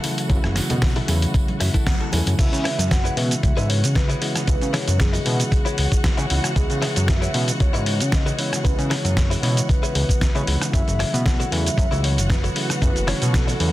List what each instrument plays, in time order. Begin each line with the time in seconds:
Already playing: clean electric guitar E4 F#4 A4, violin section F#4 F#5
0.03 tine electric piano C#3 E3 F#3 A3 E4, open hi-hat, tambourine, high conga
0.18 closed hi-hat, tambourine
0.29 analog synth bass F#2, tine electric piano C#3 E3 F#3 A3 E4, kick, closed hi-hat, tambourine
0.44 analog synth bass F#1, cross-stick, closed hi-hat
0.56 snare, open hi-hat, tambourine
0.70 analog synth bass B2, closed hi-hat, tambourine, high bongo, low conga
0.82 muted clean electric guitar stroke, kick, snare, closed hi-hat, tambourine
0.96 clean electric guitar E4 F#4 A4, open hi-hat
1.07 analog synth bass E2, tine electric piano C#3 E3 F#3 A3 E4, open hi-hat, tambourine, high conga
1.22 closed hi-hat, tambourine
1.34 muted clean electric guitar stroke, kick, closed hi-hat, tambourine
1.48 closed hi-hat, high conga
1.60 analog synth bass F#2, clean electric guitar E5, muted clean electric guitar stroke, cross-stick, open hi-hat, tambourine
1.74 clean electric guitar E4 F#4 A4, kick, closed hi-hat, tambourine, high conga
1.86 clean electric guitar F#5, kick, snare, closed hi-hat, tambourine
2.00 clean electric guitar E4 F#4 A4, closed hi-hat
2.12 analog synth bass E2, tine electric piano C#3 E3 F#3 A3 E4, clean electric guitar G#5, open hi-hat, tambourine, high bongo, high conga, low conga
2.26 analog synth bass F#2, closed hi-hat, tambourine
2.38 analog synth bass C#2, tine electric piano C#3 E3 G#3 B3 E4, violin section F#4 F#5, soft synth lead E5, kick, closed hi-hat, crash, cabasa
2.52 analog synth bass C#3, closed hi-hat, cabasa
2.64 clean electric guitar E4 G#4 B4 C#5, cross-stick, open hi-hat
2.79 analog synth bass F#2, closed hi-hat, cabasa
2.90 soft synth lead F#5, muted clean electric guitar stroke, kick, snare, closed hi-hat, cabasa
3.04 clean electric guitar E4 G#4 B4 C#5, closed hi-hat, cabasa
3.17 analog synth bass B2, tine electric piano C#3 E3 G#3 B3 E4, soft synth lead E5, open hi-hat
3.31 closed hi-hat, cabasa
3.43 analog synth bass C#2, kick, closed hi-hat, cabasa
3.57 analog synth bass G#2, clean electric guitar E4 G#4 B4 C#5, closed hi-hat, cabasa
3.69 soft synth lead C#5, open hi-hat
3.84 analog synth bass C#3, closed hi-hat, cabasa
3.95 soft synth lead B4, kick, snare, closed hi-hat, cabasa
4.09 clean electric guitar E4 G#4 B4 C#5, closed hi-hat, cabasa
4.21 tine electric piano C#3 E3 G#3 B3 E4, open hi-hat
4.36 cross-stick, closed hi-hat, cabasa
4.47 analog synth bass C#2, tine electric piano C#3 E3 G#3 B3 E4, soft synth lead B4, kick, closed hi-hat, cabasa
4.61 analog synth bass C#3, closed hi-hat, cabasa
4.73 clean electric guitar E4 G#4 B4 C#5, soft synth lead C#5, cross-stick, snare, open hi-hat
4.88 analog synth bass F#2, closed hi-hat, cabasa
4.99 soft synth lead G#4, kick, snare, closed hi-hat, cabasa
5.13 clean electric guitar E4 G#4 B4 D#5, open hi-hat, cabasa
5.25 analog synth bass B2, tine electric piano C#3 E3 G#3 B3 E4, open hi-hat
5.40 closed hi-hat, cabasa
5.52 kick, closed hi-hat, cabasa
5.65 clean electric guitar E4 G#4 B4 C#5, closed hi-hat, cabasa
5.78 analog synth bass C#2, open hi-hat
5.92 kick, closed hi-hat, cabasa
6.04 kick, snare, closed hi-hat, cabasa
6.17 analog synth bass C#3, clean electric guitar E4 G#4 B4 C#5, closed hi-hat, cabasa
6.30 analog synth bass C#2, tine electric piano C#3 E3 G#3 B3 E4, open hi-hat
6.44 cross-stick, closed hi-hat, cabasa
6.55 analog synth bass C#2, tine electric piano C#3 E3 G#3 B3 E4, soft synth lead G#4, kick, closed hi-hat, cabasa
6.70 analog synth bass C#3, closed hi-hat, cabasa
6.82 clean electric guitar E4 G#4 B4 C#5, cross-stick, open hi-hat
6.96 analog synth bass F#2, closed hi-hat, cabasa
7.07 soft synth lead E5, muted clean electric guitar stroke, kick, snare, closed hi-hat, cabasa
7.21 clean electric guitar E4 G#4 B4 C#5, closed hi-hat, cabasa
7.33 analog synth bass B2, tine electric piano C#3 E3 G#3 B3 E4, soft synth lead E5, open hi-hat
7.48 closed hi-hat, cabasa
7.60 analog synth bass C#2, soft synth lead C#5, kick, closed hi-hat, cabasa
7.73 analog synth bass G#2, clean electric guitar E4 G#4 B4 C#5, closed hi-hat, cabasa
7.86 open hi-hat
8.00 analog synth bass C#3, closed hi-hat, cabasa
8.12 soft synth lead D#5, kick, snare, closed hi-hat, cabasa
8.26 clean electric guitar E4 G#4 B4 C#5, closed hi-hat, cabasa
8.38 tine electric piano C#3 E3 G#3 B3 E4, soft synth lead C#5, open hi-hat
8.53 cross-stick, closed hi-hat, cabasa
8.63 analog synth bass C#2, tine electric piano C#3 E3 G#3 B3 E4, soft synth lead B4, kick, closed hi-hat, cabasa
8.78 analog synth bass C#3, closed hi-hat, cabasa
8.90 clean electric guitar E4 G#4 B4 C#5, soft synth lead C#5, cross-stick, snare, open hi-hat
9.05 analog synth bass F#2, closed hi-hat, cabasa
9.17 kick, snare, closed hi-hat, cabasa
9.30 clean electric guitar E4 G#4 B4 C#5, open hi-hat, cabasa
9.42 analog synth bass B2, tine electric piano C#3 E3 G#3 B3 E4, soft synth lead C#5, open hi-hat
9.57 closed hi-hat, cabasa
9.69 soft synth lead B4, kick, closed hi-hat, cabasa
9.83 clean electric guitar E4 G#4 B4 C#5, closed hi-hat, cabasa
9.95 analog synth bass C#2, open hi-hat
10.09 kick, closed hi-hat, cabasa
10.21 kick, snare, closed hi-hat, cabasa
10.34 tine electric piano C#3 E3 G#3 B3 E4, analog synth bass C#3, clean electric guitar E4 G#4 B4 C#5, closed hi-hat, cabasa
10.47 analog synth bass C#2, open hi-hat
10.61 cross-stick, closed hi-hat, cabasa
10.72 analog synth bass F#2, tine electric piano C#3 E3 F#3 A3 E4, violin section F#4 F#5, soft synth lead E5, kick, closed hi-hat, cabasa
10.87 analog synth bass F#1, closed hi-hat, cabasa
10.99 clean electric guitar E4 F#4 A4 C#5, cross-stick, open hi-hat
11.14 analog synth bass B2, closed hi-hat, cabasa
11.26 soft synth lead F#5, kick, snare, closed hi-hat, cabasa
11.40 clean electric guitar E4 F#4 A4 C#5, closed hi-hat, cabasa
11.51 analog synth bass E2, tine electric piano C#3 E3 F#3 A3 E4, soft synth lead E5, open hi-hat
11.66 closed hi-hat, cabasa
11.78 analog synth bass F#2, kick, closed hi-hat, cabasa
11.91 analog synth bass C#2, clean electric guitar E4 F#4 A4 C#5, closed hi-hat, cabasa
12.04 soft synth lead C#5, open hi-hat
12.18 analog synth bass F#1, closed hi-hat, cabasa
12.30 soft synth lead B4, kick, snare, closed hi-hat, cabasa
12.43 clean electric guitar E4 F#4 A4 C#5, closed hi-hat, cabasa
12.56 tine electric piano C#3 E3 F#3 A3 E4, open hi-hat
12.70 cross-stick, closed hi-hat, cabasa
12.82 analog synth bass F#2, tine electric piano C#3 E3 F#3 A3 E4, soft synth lead B4, kick, closed hi-hat, cabasa
12.96 analog synth bass F#1, closed hi-hat, cabasa
13.07 clean electric guitar E4 F#4 A4 C#5, soft synth lead C#5, cross-stick, snare, open hi-hat
13.22 analog synth bass B2, closed hi-hat, cabasa
13.34 soft synth lead A4, kick, snare, closed hi-hat, cabasa
13.47 clean electric guitar E4 F#4 A4 C#5, open hi-hat, cabasa
13.60 analog synth bass E2, tine electric piano C#3 E3 F#3 A3 E4, open hi-hat